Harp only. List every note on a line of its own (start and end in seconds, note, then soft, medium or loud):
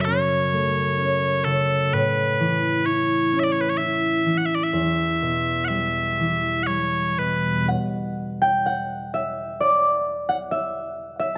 0.00 1.97 F#2 soft
0.00 1.45 C#3 soft
0.07 0.99 C#4 soft
0.53 3.86 A3 soft
1.00 3.32 C#4 soft
1.46 1.97 C#3 soft
1.92 4.78 A2 medium
2.40 4.25 E3 soft
2.85 3.79 E4 soft
3.32 6.22 C#4 soft
3.79 6.40 E4 soft
4.26 4.78 E3 soft
4.73 7.72 E2 soft
5.22 7.18 B2 soft
5.70 6.67 G3 soft
6.20 7.23 E3 soft
6.69 7.72 G3 soft
7.19 7.72 B2 soft
7.68 8.48 F#5 medium
8.42 8.72 G5 medium
8.66 10.27 F#5 medium
9.14 10.51 E5 medium
9.60 11.38 D5 medium
10.29 10.35 F#5 medium
10.51 11.19 E5 medium
11.20 11.38 E5 medium